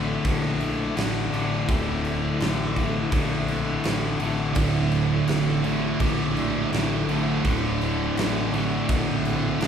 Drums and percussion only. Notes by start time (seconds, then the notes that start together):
0.25 kick, crash
0.60 crash
0.97 snare, crash
1.33 crash
1.69 kick, crash
2.05 crash
2.40 snare, crash
2.76 kick, crash
3.12 kick, crash
3.48 crash
3.84 snare, crash
4.20 crash
4.55 kick, crash
4.92 crash
5.27 snare, crash
5.64 crash
6.00 kick, crash
6.37 crash
6.73 snare, crash
7.09 crash
7.45 kick, crash
7.81 crash
8.17 snare, crash
8.54 crash
8.89 kick, crash
9.25 crash
9.61 snare, crash